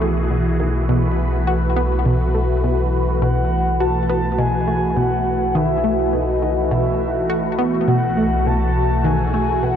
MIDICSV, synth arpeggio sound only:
0, 0, Header, 1, 2, 480
1, 0, Start_track
1, 0, Tempo, 582524
1, 735, Time_signature, 4, 2, 24, 8
1, 8044, End_track
2, 0, Start_track
2, 0, Title_t, "Synth arpeggio sound"
2, 0, Program_c, 0, 84
2, 13, Note_on_c, 0, 57, 79
2, 146, Note_off_c, 0, 57, 0
2, 252, Note_on_c, 0, 47, 77
2, 333, Note_off_c, 0, 47, 0
2, 493, Note_on_c, 0, 51, 74
2, 626, Note_off_c, 0, 51, 0
2, 733, Note_on_c, 0, 47, 100
2, 866, Note_off_c, 0, 47, 0
2, 1213, Note_on_c, 0, 66, 99
2, 1346, Note_off_c, 0, 66, 0
2, 1454, Note_on_c, 0, 59, 102
2, 1586, Note_off_c, 0, 59, 0
2, 1694, Note_on_c, 0, 47, 95
2, 1774, Note_off_c, 0, 47, 0
2, 1932, Note_on_c, 0, 57, 76
2, 2066, Note_off_c, 0, 57, 0
2, 2174, Note_on_c, 0, 47, 79
2, 2373, Note_off_c, 0, 47, 0
2, 2652, Note_on_c, 0, 47, 102
2, 2786, Note_off_c, 0, 47, 0
2, 3134, Note_on_c, 0, 66, 97
2, 3266, Note_off_c, 0, 66, 0
2, 3373, Note_on_c, 0, 59, 104
2, 3506, Note_off_c, 0, 59, 0
2, 3613, Note_on_c, 0, 47, 101
2, 3693, Note_off_c, 0, 47, 0
2, 3853, Note_on_c, 0, 57, 76
2, 3986, Note_off_c, 0, 57, 0
2, 4093, Note_on_c, 0, 47, 76
2, 4292, Note_off_c, 0, 47, 0
2, 4573, Note_on_c, 0, 51, 101
2, 4706, Note_off_c, 0, 51, 0
2, 4813, Note_on_c, 0, 57, 78
2, 4946, Note_off_c, 0, 57, 0
2, 5054, Note_on_c, 0, 47, 77
2, 5134, Note_off_c, 0, 47, 0
2, 5293, Note_on_c, 0, 51, 77
2, 5426, Note_off_c, 0, 51, 0
2, 5532, Note_on_c, 0, 47, 98
2, 5666, Note_off_c, 0, 47, 0
2, 6012, Note_on_c, 0, 66, 105
2, 6146, Note_off_c, 0, 66, 0
2, 6251, Note_on_c, 0, 59, 101
2, 6385, Note_off_c, 0, 59, 0
2, 6491, Note_on_c, 0, 47, 102
2, 6572, Note_off_c, 0, 47, 0
2, 6732, Note_on_c, 0, 57, 75
2, 6866, Note_off_c, 0, 57, 0
2, 6974, Note_on_c, 0, 47, 77
2, 7173, Note_off_c, 0, 47, 0
2, 7453, Note_on_c, 0, 51, 99
2, 7586, Note_off_c, 0, 51, 0
2, 7693, Note_on_c, 0, 57, 79
2, 7826, Note_off_c, 0, 57, 0
2, 7933, Note_on_c, 0, 47, 81
2, 8013, Note_off_c, 0, 47, 0
2, 8044, End_track
0, 0, End_of_file